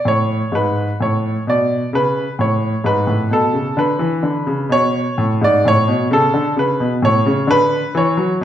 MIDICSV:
0, 0, Header, 1, 2, 480
1, 0, Start_track
1, 0, Key_signature, 3, "major"
1, 0, Tempo, 933126
1, 26, Time_signature, 3, 2, 24, 8
1, 3386, Tempo, 907716
1, 4368, End_track
2, 0, Start_track
2, 0, Title_t, "Grand piano"
2, 0, Program_c, 0, 0
2, 26, Note_on_c, 0, 45, 59
2, 41, Note_on_c, 0, 73, 86
2, 203, Note_off_c, 0, 45, 0
2, 268, Note_on_c, 0, 44, 57
2, 279, Note_off_c, 0, 73, 0
2, 284, Note_on_c, 0, 71, 81
2, 444, Note_off_c, 0, 44, 0
2, 486, Note_off_c, 0, 71, 0
2, 516, Note_on_c, 0, 45, 55
2, 526, Note_on_c, 0, 73, 73
2, 690, Note_off_c, 0, 45, 0
2, 727, Note_off_c, 0, 73, 0
2, 757, Note_on_c, 0, 47, 59
2, 769, Note_on_c, 0, 74, 82
2, 929, Note_off_c, 0, 47, 0
2, 968, Note_off_c, 0, 74, 0
2, 993, Note_on_c, 0, 49, 61
2, 1004, Note_on_c, 0, 71, 88
2, 1164, Note_off_c, 0, 49, 0
2, 1201, Note_off_c, 0, 71, 0
2, 1229, Note_on_c, 0, 45, 59
2, 1239, Note_on_c, 0, 73, 72
2, 1400, Note_off_c, 0, 45, 0
2, 1462, Note_on_c, 0, 44, 62
2, 1471, Note_off_c, 0, 73, 0
2, 1472, Note_on_c, 0, 71, 85
2, 1578, Note_off_c, 0, 44, 0
2, 1579, Note_on_c, 0, 45, 54
2, 1696, Note_off_c, 0, 45, 0
2, 1699, Note_on_c, 0, 47, 60
2, 1707, Note_off_c, 0, 71, 0
2, 1713, Note_on_c, 0, 69, 86
2, 1815, Note_off_c, 0, 47, 0
2, 1818, Note_on_c, 0, 49, 54
2, 1934, Note_off_c, 0, 49, 0
2, 1939, Note_on_c, 0, 50, 61
2, 1948, Note_off_c, 0, 69, 0
2, 1948, Note_on_c, 0, 71, 82
2, 2053, Note_on_c, 0, 52, 63
2, 2055, Note_off_c, 0, 50, 0
2, 2172, Note_off_c, 0, 52, 0
2, 2175, Note_on_c, 0, 50, 59
2, 2292, Note_off_c, 0, 50, 0
2, 2298, Note_on_c, 0, 49, 61
2, 2414, Note_off_c, 0, 49, 0
2, 2414, Note_on_c, 0, 47, 65
2, 2425, Note_off_c, 0, 71, 0
2, 2429, Note_on_c, 0, 73, 103
2, 2592, Note_off_c, 0, 47, 0
2, 2663, Note_on_c, 0, 45, 64
2, 2737, Note_off_c, 0, 73, 0
2, 2780, Note_off_c, 0, 45, 0
2, 2785, Note_on_c, 0, 44, 60
2, 2800, Note_on_c, 0, 74, 93
2, 2902, Note_off_c, 0, 44, 0
2, 2907, Note_on_c, 0, 45, 64
2, 2916, Note_off_c, 0, 74, 0
2, 2921, Note_on_c, 0, 73, 97
2, 3023, Note_off_c, 0, 45, 0
2, 3024, Note_on_c, 0, 47, 67
2, 3121, Note_off_c, 0, 73, 0
2, 3141, Note_off_c, 0, 47, 0
2, 3142, Note_on_c, 0, 49, 69
2, 3154, Note_on_c, 0, 69, 97
2, 3259, Note_off_c, 0, 49, 0
2, 3260, Note_on_c, 0, 50, 62
2, 3354, Note_off_c, 0, 69, 0
2, 3377, Note_off_c, 0, 50, 0
2, 3378, Note_on_c, 0, 49, 65
2, 3391, Note_on_c, 0, 71, 83
2, 3498, Note_off_c, 0, 49, 0
2, 3501, Note_on_c, 0, 47, 65
2, 3596, Note_off_c, 0, 71, 0
2, 3619, Note_on_c, 0, 45, 69
2, 3620, Note_off_c, 0, 47, 0
2, 3632, Note_on_c, 0, 73, 96
2, 3739, Note_off_c, 0, 45, 0
2, 3745, Note_on_c, 0, 49, 72
2, 3857, Note_on_c, 0, 50, 71
2, 3862, Note_off_c, 0, 49, 0
2, 3872, Note_off_c, 0, 73, 0
2, 3874, Note_on_c, 0, 71, 107
2, 4034, Note_off_c, 0, 50, 0
2, 4107, Note_on_c, 0, 52, 73
2, 4111, Note_off_c, 0, 71, 0
2, 4122, Note_on_c, 0, 73, 85
2, 4221, Note_off_c, 0, 52, 0
2, 4226, Note_on_c, 0, 54, 67
2, 4320, Note_off_c, 0, 73, 0
2, 4341, Note_off_c, 0, 54, 0
2, 4368, End_track
0, 0, End_of_file